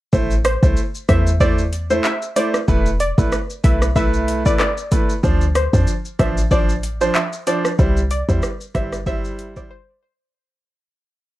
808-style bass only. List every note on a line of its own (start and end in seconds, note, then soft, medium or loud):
0.13 0.58 A1 loud
0.63 0.75 C2 medium
1.09 2.01 E2 medium
2.68 3.13 E1 loud
3.18 3.31 A1 loud
3.64 4.56 B1 loud
5.24 5.68 D2 loud
5.73 5.86 F2 loud
6.20 7.11 A1 loud
7.79 8.23 C2 loud
8.29 8.41 E2 loud
8.75 9.67 G1 medium